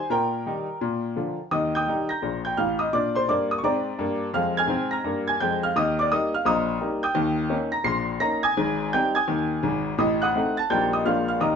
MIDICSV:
0, 0, Header, 1, 2, 480
1, 0, Start_track
1, 0, Key_signature, -3, "major"
1, 0, Tempo, 353357
1, 137, Time_signature, 4, 2, 24, 8
1, 15699, End_track
2, 0, Start_track
2, 0, Title_t, "Grand piano"
2, 0, Program_c, 0, 0
2, 0, Note_on_c, 0, 84, 85
2, 134, Note_on_c, 0, 46, 69
2, 143, Note_off_c, 0, 84, 0
2, 145, Note_on_c, 0, 82, 86
2, 156, Note_on_c, 0, 70, 67
2, 158, Note_on_c, 0, 79, 73
2, 390, Control_c, 0, 64, 127
2, 543, Note_off_c, 0, 46, 0
2, 627, Control_c, 0, 64, 0
2, 629, Note_on_c, 0, 55, 43
2, 630, Note_on_c, 0, 51, 44
2, 639, Note_on_c, 0, 63, 53
2, 890, Note_off_c, 0, 51, 0
2, 890, Note_off_c, 0, 55, 0
2, 897, Note_off_c, 0, 63, 0
2, 1103, Note_on_c, 0, 46, 77
2, 1337, Control_c, 0, 64, 127
2, 1508, Note_off_c, 0, 46, 0
2, 1576, Note_on_c, 0, 50, 45
2, 1580, Note_on_c, 0, 53, 44
2, 1586, Note_on_c, 0, 65, 46
2, 1595, Control_c, 0, 64, 0
2, 1838, Note_off_c, 0, 70, 0
2, 1839, Note_off_c, 0, 79, 0
2, 1840, Note_off_c, 0, 50, 0
2, 1843, Note_off_c, 0, 53, 0
2, 1847, Note_off_c, 0, 65, 0
2, 1887, Note_off_c, 0, 82, 0
2, 2055, Note_on_c, 0, 51, 64
2, 2056, Note_on_c, 0, 87, 84
2, 2057, Note_on_c, 0, 39, 63
2, 2073, Note_on_c, 0, 75, 61
2, 2278, Control_c, 0, 64, 127
2, 2351, Note_off_c, 0, 75, 0
2, 2363, Note_off_c, 0, 87, 0
2, 2378, Note_on_c, 0, 91, 88
2, 2395, Note_on_c, 0, 79, 66
2, 2397, Note_on_c, 0, 87, 65
2, 2463, Note_off_c, 0, 51, 0
2, 2464, Note_off_c, 0, 39, 0
2, 2547, Note_on_c, 0, 51, 43
2, 2553, Note_on_c, 0, 55, 36
2, 2554, Control_c, 0, 64, 0
2, 2562, Note_on_c, 0, 63, 48
2, 2808, Note_off_c, 0, 51, 0
2, 2812, Note_off_c, 0, 55, 0
2, 2819, Note_off_c, 0, 63, 0
2, 2826, Note_off_c, 0, 79, 0
2, 2827, Note_off_c, 0, 87, 0
2, 2837, Note_off_c, 0, 91, 0
2, 2840, Note_on_c, 0, 94, 79
2, 2858, Note_on_c, 0, 91, 63
2, 2863, Note_on_c, 0, 82, 51
2, 3020, Note_on_c, 0, 34, 58
2, 3022, Note_on_c, 0, 46, 53
2, 3297, Note_off_c, 0, 91, 0
2, 3300, Note_off_c, 0, 82, 0
2, 3321, Note_off_c, 0, 94, 0
2, 3325, Note_on_c, 0, 91, 82
2, 3344, Note_on_c, 0, 79, 59
2, 3425, Note_off_c, 0, 34, 0
2, 3427, Note_off_c, 0, 46, 0
2, 3494, Note_off_c, 0, 79, 0
2, 3496, Note_off_c, 0, 91, 0
2, 3496, Note_on_c, 0, 89, 77
2, 3500, Note_on_c, 0, 33, 61
2, 3505, Note_on_c, 0, 45, 54
2, 3518, Note_on_c, 0, 77, 60
2, 3790, Note_on_c, 0, 87, 74
2, 3793, Note_off_c, 0, 77, 0
2, 3801, Note_on_c, 0, 75, 57
2, 3803, Note_off_c, 0, 89, 0
2, 3882, Note_off_c, 0, 33, 0
2, 3884, Note_off_c, 0, 45, 0
2, 3962, Note_off_c, 0, 75, 0
2, 3968, Note_off_c, 0, 87, 0
2, 3978, Note_on_c, 0, 46, 62
2, 3983, Note_on_c, 0, 86, 82
2, 3997, Note_on_c, 0, 74, 64
2, 4009, Note_on_c, 0, 62, 65
2, 4215, Control_c, 0, 64, 127
2, 4272, Note_off_c, 0, 74, 0
2, 4285, Note_on_c, 0, 84, 88
2, 4286, Note_off_c, 0, 86, 0
2, 4297, Note_on_c, 0, 72, 64
2, 4360, Note_off_c, 0, 46, 0
2, 4379, Note_off_c, 0, 62, 0
2, 4450, Note_off_c, 0, 72, 0
2, 4456, Note_off_c, 0, 84, 0
2, 4461, Note_on_c, 0, 43, 57
2, 4469, Note_on_c, 0, 86, 84
2, 4471, Control_c, 0, 64, 0
2, 4487, Note_on_c, 0, 74, 61
2, 4488, Note_on_c, 0, 58, 65
2, 4757, Note_off_c, 0, 74, 0
2, 4769, Note_off_c, 0, 86, 0
2, 4772, Note_on_c, 0, 87, 76
2, 4842, Note_off_c, 0, 43, 0
2, 4858, Note_off_c, 0, 58, 0
2, 4867, Note_on_c, 0, 85, 71
2, 4870, Note_off_c, 0, 87, 0
2, 4934, Note_on_c, 0, 44, 65
2, 4935, Note_off_c, 0, 85, 0
2, 4944, Note_on_c, 0, 86, 80
2, 4949, Note_on_c, 0, 74, 62
2, 4949, Note_on_c, 0, 82, 68
2, 4956, Note_on_c, 0, 60, 62
2, 5317, Note_off_c, 0, 44, 0
2, 5331, Note_off_c, 0, 60, 0
2, 5415, Note_on_c, 0, 43, 70
2, 5441, Note_on_c, 0, 58, 65
2, 5798, Note_off_c, 0, 43, 0
2, 5814, Note_off_c, 0, 58, 0
2, 5846, Note_off_c, 0, 74, 0
2, 5846, Note_off_c, 0, 82, 0
2, 5890, Note_on_c, 0, 41, 66
2, 5897, Note_on_c, 0, 89, 84
2, 5898, Note_off_c, 0, 86, 0
2, 5911, Note_on_c, 0, 77, 70
2, 5914, Note_on_c, 0, 56, 58
2, 6134, Control_c, 0, 64, 127
2, 6189, Note_off_c, 0, 77, 0
2, 6203, Note_off_c, 0, 89, 0
2, 6212, Note_on_c, 0, 92, 93
2, 6226, Note_on_c, 0, 89, 76
2, 6237, Note_on_c, 0, 80, 68
2, 6275, Note_off_c, 0, 41, 0
2, 6290, Note_off_c, 0, 56, 0
2, 6348, Note_on_c, 0, 44, 66
2, 6378, Note_on_c, 0, 60, 68
2, 6392, Control_c, 0, 64, 0
2, 6661, Note_off_c, 0, 89, 0
2, 6666, Note_off_c, 0, 80, 0
2, 6669, Note_on_c, 0, 94, 74
2, 6686, Note_off_c, 0, 92, 0
2, 6689, Note_on_c, 0, 82, 62
2, 6694, Note_on_c, 0, 89, 58
2, 6742, Note_off_c, 0, 44, 0
2, 6760, Note_off_c, 0, 60, 0
2, 6849, Note_on_c, 0, 43, 65
2, 6880, Note_on_c, 0, 58, 61
2, 7131, Note_off_c, 0, 82, 0
2, 7134, Note_off_c, 0, 89, 0
2, 7155, Note_off_c, 0, 94, 0
2, 7166, Note_on_c, 0, 92, 91
2, 7184, Note_on_c, 0, 80, 61
2, 7234, Note_off_c, 0, 43, 0
2, 7253, Note_off_c, 0, 58, 0
2, 7333, Note_off_c, 0, 80, 0
2, 7335, Note_off_c, 0, 92, 0
2, 7341, Note_on_c, 0, 91, 95
2, 7346, Note_on_c, 0, 41, 61
2, 7359, Note_on_c, 0, 79, 69
2, 7372, Note_on_c, 0, 56, 64
2, 7633, Note_off_c, 0, 79, 0
2, 7645, Note_off_c, 0, 91, 0
2, 7653, Note_on_c, 0, 89, 91
2, 7668, Note_on_c, 0, 77, 58
2, 7725, Note_off_c, 0, 41, 0
2, 7740, Note_off_c, 0, 56, 0
2, 7816, Note_off_c, 0, 77, 0
2, 7819, Note_off_c, 0, 89, 0
2, 7823, Note_on_c, 0, 39, 75
2, 7824, Note_on_c, 0, 51, 65
2, 7830, Note_on_c, 0, 87, 96
2, 7847, Note_on_c, 0, 75, 71
2, 8051, Control_c, 0, 64, 127
2, 8117, Note_off_c, 0, 75, 0
2, 8129, Note_off_c, 0, 87, 0
2, 8138, Note_on_c, 0, 86, 86
2, 8163, Note_on_c, 0, 74, 73
2, 8227, Note_off_c, 0, 39, 0
2, 8227, Note_off_c, 0, 51, 0
2, 8302, Note_off_c, 0, 86, 0
2, 8303, Note_off_c, 0, 74, 0
2, 8309, Note_on_c, 0, 87, 92
2, 8313, Control_c, 0, 64, 0
2, 8315, Note_on_c, 0, 55, 44
2, 8317, Note_on_c, 0, 58, 53
2, 8323, Note_on_c, 0, 63, 53
2, 8334, Note_on_c, 0, 75, 72
2, 8573, Note_off_c, 0, 55, 0
2, 8574, Note_off_c, 0, 58, 0
2, 8579, Note_off_c, 0, 63, 0
2, 8601, Note_off_c, 0, 75, 0
2, 8608, Note_off_c, 0, 87, 0
2, 8619, Note_on_c, 0, 89, 81
2, 8635, Note_on_c, 0, 77, 53
2, 8764, Note_on_c, 0, 46, 72
2, 8765, Note_on_c, 0, 34, 78
2, 8779, Note_off_c, 0, 77, 0
2, 8779, Note_on_c, 0, 87, 98
2, 8782, Note_off_c, 0, 89, 0
2, 8789, Note_on_c, 0, 75, 68
2, 8789, Note_on_c, 0, 82, 70
2, 9176, Note_off_c, 0, 34, 0
2, 9176, Note_off_c, 0, 46, 0
2, 9251, Note_on_c, 0, 55, 47
2, 9256, Note_on_c, 0, 58, 40
2, 9264, Note_on_c, 0, 63, 50
2, 9514, Note_off_c, 0, 75, 0
2, 9515, Note_off_c, 0, 82, 0
2, 9516, Note_off_c, 0, 55, 0
2, 9519, Note_off_c, 0, 58, 0
2, 9525, Note_off_c, 0, 63, 0
2, 9541, Note_off_c, 0, 87, 0
2, 9550, Note_on_c, 0, 91, 88
2, 9562, Note_on_c, 0, 87, 70
2, 9563, Note_on_c, 0, 79, 68
2, 9710, Note_on_c, 0, 51, 71
2, 9711, Note_on_c, 0, 39, 82
2, 9961, Control_c, 0, 64, 127
2, 10128, Note_off_c, 0, 39, 0
2, 10128, Note_off_c, 0, 51, 0
2, 10178, Note_on_c, 0, 58, 48
2, 10186, Note_on_c, 0, 61, 55
2, 10190, Note_on_c, 0, 63, 57
2, 10234, Control_c, 0, 64, 0
2, 10452, Note_off_c, 0, 58, 0
2, 10457, Note_off_c, 0, 61, 0
2, 10460, Note_off_c, 0, 63, 0
2, 10467, Note_off_c, 0, 87, 0
2, 10468, Note_off_c, 0, 79, 0
2, 10485, Note_on_c, 0, 94, 85
2, 10497, Note_on_c, 0, 82, 71
2, 10516, Note_off_c, 0, 91, 0
2, 10650, Note_on_c, 0, 34, 70
2, 10654, Note_on_c, 0, 46, 72
2, 10656, Note_on_c, 0, 96, 105
2, 10669, Note_off_c, 0, 82, 0
2, 10676, Note_off_c, 0, 94, 0
2, 10681, Note_on_c, 0, 84, 88
2, 11077, Note_off_c, 0, 34, 0
2, 11079, Note_off_c, 0, 46, 0
2, 11133, Note_off_c, 0, 84, 0
2, 11137, Note_on_c, 0, 58, 50
2, 11141, Note_on_c, 0, 61, 47
2, 11142, Note_on_c, 0, 94, 107
2, 11150, Note_on_c, 0, 63, 57
2, 11155, Note_off_c, 0, 96, 0
2, 11159, Note_on_c, 0, 82, 80
2, 11411, Note_off_c, 0, 58, 0
2, 11414, Note_off_c, 0, 61, 0
2, 11421, Note_off_c, 0, 63, 0
2, 11452, Note_off_c, 0, 82, 0
2, 11453, Note_on_c, 0, 92, 97
2, 11461, Note_on_c, 0, 87, 74
2, 11466, Note_off_c, 0, 94, 0
2, 11473, Note_on_c, 0, 80, 77
2, 11642, Note_on_c, 0, 32, 71
2, 11643, Note_on_c, 0, 44, 91
2, 11907, Control_c, 0, 64, 127
2, 12055, Note_off_c, 0, 32, 0
2, 12056, Note_off_c, 0, 44, 0
2, 12078, Note_off_c, 0, 87, 0
2, 12084, Note_off_c, 0, 80, 0
2, 12120, Note_off_c, 0, 92, 0
2, 12126, Note_on_c, 0, 55, 45
2, 12132, Note_on_c, 0, 91, 111
2, 12137, Note_on_c, 0, 60, 49
2, 12143, Note_on_c, 0, 63, 56
2, 12146, Control_c, 0, 64, 0
2, 12149, Note_on_c, 0, 79, 81
2, 12392, Note_off_c, 0, 55, 0
2, 12400, Note_off_c, 0, 60, 0
2, 12405, Note_off_c, 0, 63, 0
2, 12429, Note_off_c, 0, 79, 0
2, 12429, Note_on_c, 0, 92, 89
2, 12441, Note_off_c, 0, 91, 0
2, 12443, Note_on_c, 0, 87, 61
2, 12446, Note_on_c, 0, 80, 64
2, 12602, Note_on_c, 0, 51, 71
2, 12603, Note_on_c, 0, 39, 67
2, 13016, Note_off_c, 0, 51, 0
2, 13017, Note_off_c, 0, 39, 0
2, 13080, Note_on_c, 0, 32, 77
2, 13087, Note_on_c, 0, 44, 69
2, 13349, Note_off_c, 0, 87, 0
2, 13351, Note_off_c, 0, 80, 0
2, 13396, Note_off_c, 0, 92, 0
2, 13470, Note_off_c, 0, 32, 0
2, 13474, Note_off_c, 0, 44, 0
2, 13556, Note_on_c, 0, 33, 76
2, 13561, Note_on_c, 0, 45, 77
2, 13566, Note_on_c, 0, 87, 84
2, 13585, Note_on_c, 0, 75, 71
2, 13821, Control_c, 0, 64, 127
2, 13867, Note_off_c, 0, 75, 0
2, 13879, Note_off_c, 0, 87, 0
2, 13879, Note_on_c, 0, 90, 96
2, 13892, Note_on_c, 0, 78, 73
2, 13903, Note_on_c, 0, 87, 68
2, 13973, Note_off_c, 0, 33, 0
2, 13975, Note_off_c, 0, 45, 0
2, 14064, Note_on_c, 0, 57, 54
2, 14066, Note_on_c, 0, 63, 53
2, 14070, Note_on_c, 0, 60, 47
2, 14071, Control_c, 0, 64, 0
2, 14326, Note_off_c, 0, 57, 0
2, 14327, Note_off_c, 0, 63, 0
2, 14331, Note_off_c, 0, 60, 0
2, 14335, Note_off_c, 0, 78, 0
2, 14341, Note_off_c, 0, 87, 0
2, 14362, Note_off_c, 0, 90, 0
2, 14362, Note_on_c, 0, 93, 84
2, 14387, Note_on_c, 0, 81, 67
2, 14536, Note_off_c, 0, 93, 0
2, 14537, Note_off_c, 0, 81, 0
2, 14537, Note_on_c, 0, 55, 47
2, 14537, Note_on_c, 0, 91, 101
2, 14539, Note_on_c, 0, 46, 66
2, 14540, Note_on_c, 0, 34, 68
2, 14548, Note_on_c, 0, 58, 40
2, 14558, Note_on_c, 0, 63, 39
2, 14558, Note_on_c, 0, 79, 73
2, 14778, Control_c, 0, 64, 127
2, 14801, Note_off_c, 0, 55, 0
2, 14809, Note_off_c, 0, 58, 0
2, 14816, Note_off_c, 0, 63, 0
2, 14834, Note_off_c, 0, 79, 0
2, 14845, Note_off_c, 0, 91, 0
2, 14852, Note_on_c, 0, 87, 71
2, 14863, Note_on_c, 0, 75, 49
2, 14946, Note_off_c, 0, 46, 0
2, 14947, Note_off_c, 0, 34, 0
2, 15015, Note_off_c, 0, 75, 0
2, 15015, Note_on_c, 0, 34, 64
2, 15015, Note_on_c, 0, 46, 68
2, 15018, Note_on_c, 0, 89, 71
2, 15019, Note_on_c, 0, 56, 43
2, 15021, Note_off_c, 0, 87, 0
2, 15023, Note_on_c, 0, 58, 43
2, 15028, Control_c, 0, 64, 0
2, 15029, Note_on_c, 0, 62, 39
2, 15035, Note_on_c, 0, 77, 69
2, 15265, Control_c, 0, 64, 127
2, 15283, Note_off_c, 0, 56, 0
2, 15286, Note_off_c, 0, 58, 0
2, 15290, Note_off_c, 0, 62, 0
2, 15307, Note_off_c, 0, 89, 0
2, 15313, Note_off_c, 0, 77, 0
2, 15327, Note_on_c, 0, 89, 73
2, 15346, Note_on_c, 0, 77, 58
2, 15424, Note_off_c, 0, 34, 0
2, 15425, Note_off_c, 0, 46, 0
2, 15491, Note_on_c, 0, 51, 72
2, 15492, Note_on_c, 0, 39, 66
2, 15497, Note_off_c, 0, 77, 0
2, 15498, Note_on_c, 0, 87, 71
2, 15499, Note_off_c, 0, 89, 0
2, 15511, Note_on_c, 0, 75, 56
2, 15512, Control_c, 0, 64, 0
2, 15520, Note_on_c, 0, 82, 65
2, 15699, Note_off_c, 0, 39, 0
2, 15699, Note_off_c, 0, 51, 0
2, 15699, Note_off_c, 0, 75, 0
2, 15699, Note_off_c, 0, 82, 0
2, 15699, Note_off_c, 0, 87, 0
2, 15699, End_track
0, 0, End_of_file